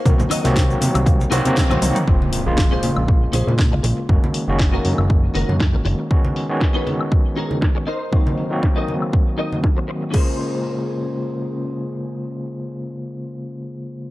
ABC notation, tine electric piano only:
X:1
M:4/4
L:1/16
Q:"Swing 16ths" 1/4=119
K:Bbm
V:1 name="Tine electric piano"
[E,G,B,CG]3 [E,G,B,CG]6- [E,G,B,CG] [E,G,B,CG] [E,G,B,CG]4- [E,G,B,CG] | [D,A,B,CF]3 [D,A,B,F]12- [D,A,B,F] | [E,A,B,DG]3 [E,A,B,DG]12- [E,A,B,DG] | [^D,^G,=B,_D^F]3 [^D,G,B,_DF]8- [^D,G,B,_DF]3 z2 |
[E,G,B,CG]3 [E,G,B,CG]12- [E,G,B,CG] | [D,A,B,Fc]16- | [D,A,B,Fc]16 |]